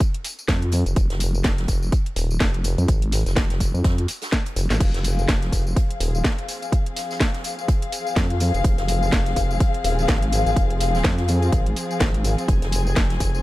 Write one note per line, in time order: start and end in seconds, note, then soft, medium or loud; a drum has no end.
0.00 kick loud
0.00 closed hi-hat loud
0.00 closed hi-hat medium
0.00 tambourine soft
0.14 closed hi-hat medium
0.24 closed hi-hat medium
0.24 open hi-hat loud
0.24 tambourine medium
0.39 tambourine soft
0.48 0.84 F2 loud
0.48 kick loud
0.48 snare loud
0.48 closed hi-hat medium
0.48 tambourine soft
0.62 closed hi-hat medium
0.72 closed hi-hat medium
0.72 open hi-hat medium
0.72 tambourine medium
0.86 0.95 F1 loud
0.86 closed hi-hat soft
0.86 tambourine soft
0.96 1.08 F1 loud
0.96 kick loud
0.96 closed hi-hat medium
0.96 tambourine soft
1.10 1.43 F1 loud
1.10 snare medium
1.10 closed hi-hat soft
1.20 closed hi-hat medium
1.20 open hi-hat loud
1.20 tambourine medium
1.34 tambourine soft
1.44 1.67 F1 loud
1.44 kick loud
1.44 snare loud
1.44 closed hi-hat medium
1.44 tambourine soft
1.58 snare medium
1.58 closed hi-hat medium
1.68 1.91 F1 loud
1.68 kick medium
1.68 closed hi-hat medium
1.68 open hi-hat medium
1.68 tambourine medium
1.82 tambourine soft
1.92 kick loud
1.92 closed hi-hat medium
1.92 tambourine soft
2.06 closed hi-hat medium
2.16 2.39 D#1 loud
2.16 closed hi-hat medium
2.16 open hi-hat medium
2.16 tambourine medium
2.31 tambourine soft
2.40 2.76 F1 medium
2.40 kick loud
2.40 snare loud
2.40 closed hi-hat medium
2.54 closed hi-hat medium
2.64 closed hi-hat medium
2.64 open hi-hat medium
2.64 tambourine medium
2.78 2.87 F2 loud
2.78 closed hi-hat soft
2.78 tambourine soft
2.88 3.24 G#1 loud
2.88 kick loud
2.88 closed hi-hat medium
2.88 tambourine soft
3.02 closed hi-hat medium
3.12 snare soft
3.12 closed hi-hat medium
3.12 open hi-hat loud
3.12 tambourine medium
3.26 3.72 F1 medium
3.26 snare medium
3.26 closed hi-hat soft
3.26 tambourine soft
3.36 kick loud
3.36 snare loud
3.36 closed hi-hat medium
3.36 tambourine soft
3.50 snare soft
3.50 closed hi-hat medium
3.60 kick medium
3.60 closed hi-hat medium
3.60 open hi-hat loud
3.60 tambourine medium
3.74 3.83 F2 loud
3.74 tambourine soft
3.84 4.07 F2 loud
3.84 kick loud
3.84 snare loud
3.84 closed hi-hat medium
3.84 tambourine soft
3.98 closed hi-hat medium
4.08 closed hi-hat medium
4.08 open hi-hat loud
4.08 tambourine medium
4.21 snare loud
4.21 closed hi-hat medium
4.21 closed hi-hat soft
4.21 tambourine soft
4.32 kick loud
4.32 snare loud
4.32 closed hi-hat medium
4.32 tambourine soft
4.46 closed hi-hat medium
4.56 4.68 F1 loud
4.56 closed hi-hat medium
4.56 open hi-hat medium
4.56 tambourine medium
4.70 4.79 G#1 loud
4.70 snare medium
4.70 closed hi-hat soft
4.70 tambourine soft
4.80 4.92 F1 loud
4.80 13.42 F3 medium
4.80 13.42 C4 medium
4.80 13.42 G#4 medium
4.80 12.47 F5 loud
4.80 kick loud
4.80 closed hi-hat medium
4.80 crash medium
4.80 tambourine soft
4.94 5.27 F1 loud
4.94 snare medium
4.94 closed hi-hat medium
5.04 closed hi-hat medium
5.04 open hi-hat loud
5.04 tambourine medium
5.19 tambourine soft
5.28 5.51 F1 loud
5.28 kick loud
5.28 snare loud
5.28 closed hi-hat medium
5.28 tambourine soft
5.42 snare medium
5.42 closed hi-hat medium
5.52 5.75 F1 loud
5.52 kick medium
5.52 closed hi-hat medium
5.52 open hi-hat medium
5.52 tambourine medium
5.67 tambourine soft
5.76 kick loud
5.76 closed hi-hat loud
5.76 closed hi-hat medium
5.76 tambourine soft
5.90 closed hi-hat medium
6.00 6.23 D#1 loud
6.00 closed hi-hat medium
6.00 open hi-hat loud
6.00 tambourine medium
6.15 tambourine soft
6.24 kick loud
6.24 snare loud
6.24 closed hi-hat medium
6.24 tambourine soft
6.38 closed hi-hat medium
6.49 closed hi-hat medium
6.49 open hi-hat loud
6.49 tambourine medium
6.62 closed hi-hat soft
6.62 tambourine soft
6.72 kick loud
6.72 closed hi-hat medium
6.72 tambourine soft
6.86 closed hi-hat medium
6.96 snare soft
6.96 closed hi-hat medium
6.96 open hi-hat loud
6.96 tambourine medium
7.10 snare medium
7.10 tambourine soft
7.20 kick loud
7.20 snare loud
7.20 closed hi-hat medium
7.20 tambourine soft
7.34 snare medium
7.34 closed hi-hat medium
7.44 closed hi-hat medium
7.44 open hi-hat medium
7.44 tambourine medium
7.59 tambourine soft
7.68 kick loud
7.68 closed hi-hat medium
7.68 closed hi-hat loud
7.68 tambourine soft
7.82 closed hi-hat medium
7.92 closed hi-hat medium
7.92 open hi-hat loud
7.92 tambourine medium
8.07 tambourine soft
8.16 8.52 F2 loud
8.16 kick loud
8.16 snare loud
8.16 closed hi-hat medium
8.30 closed hi-hat medium
8.40 closed hi-hat medium
8.40 open hi-hat medium
8.40 tambourine medium
8.54 8.63 F1 loud
8.54 closed hi-hat soft
8.54 tambourine soft
8.64 8.76 F1 loud
8.64 kick loud
8.64 closed hi-hat medium
8.64 tambourine soft
8.78 9.11 F1 loud
8.78 snare medium
8.78 closed hi-hat medium
8.88 closed hi-hat medium
8.88 open hi-hat loud
8.88 tambourine medium
9.03 tambourine soft
9.12 9.35 F1 loud
9.12 kick loud
9.12 snare loud
9.12 closed hi-hat medium
9.26 snare medium
9.26 closed hi-hat medium
9.36 9.59 F1 loud
9.36 kick medium
9.36 closed hi-hat medium
9.36 open hi-hat loud
9.36 tambourine medium
9.51 tambourine soft
9.60 kick loud
9.60 closed hi-hat medium
9.60 tambourine soft
9.74 closed hi-hat medium
9.84 10.07 D#1 medium
9.84 closed hi-hat medium
9.84 open hi-hat loud
9.84 tambourine medium
9.99 tambourine soft
10.08 10.44 G#1 loud
10.08 kick loud
10.08 snare loud
10.08 closed hi-hat medium
10.08 tambourine soft
10.22 closed hi-hat medium
10.33 closed hi-hat medium
10.33 open hi-hat medium
10.33 tambourine medium
10.46 10.55 G#1 loud
10.46 closed hi-hat soft
10.46 tambourine soft
10.56 11.03 F1 loud
10.56 kick loud
10.56 closed hi-hat medium
10.56 tambourine soft
10.70 closed hi-hat soft
10.80 snare soft
10.80 closed hi-hat medium
10.80 open hi-hat loud
10.80 tambourine medium
10.95 snare medium
10.95 tambourine soft
11.04 11.51 F2 loud
11.04 kick loud
11.04 snare loud
11.04 closed hi-hat medium
11.18 snare soft
11.18 closed hi-hat medium
11.28 closed hi-hat medium
11.28 open hi-hat loud
11.28 tambourine medium
11.42 closed hi-hat soft
11.42 tambourine soft
11.52 11.75 G#1 loud
11.52 kick loud
11.52 closed hi-hat loud
11.52 closed hi-hat medium
11.52 tambourine soft
11.66 closed hi-hat medium
11.76 closed hi-hat medium
11.76 open hi-hat loud
11.76 tambourine medium
11.91 tambourine soft
12.00 12.36 G#1 loud
12.00 kick loud
12.00 snare loud
12.00 closed hi-hat medium
12.00 tambourine soft
12.14 closed hi-hat soft
12.24 closed hi-hat medium
12.24 open hi-hat medium
12.24 tambourine medium
12.38 closed hi-hat soft
12.38 tambourine soft
12.48 12.60 F1 loud
12.48 13.42 G#5 loud
12.48 kick loud
12.48 closed hi-hat medium
12.48 tambourine soft
12.62 12.95 F1 loud
12.62 snare medium
12.62 closed hi-hat soft
12.72 closed hi-hat medium
12.72 open hi-hat loud
12.72 tambourine medium
12.87 tambourine soft
12.96 13.19 F1 loud
12.96 kick loud
12.96 snare loud
12.96 closed hi-hat medium
12.96 tambourine soft
13.10 snare medium
13.10 closed hi-hat soft
13.20 13.42 F1 loud
13.20 kick medium
13.20 closed hi-hat medium
13.20 open hi-hat loud
13.20 tambourine medium
13.35 tambourine soft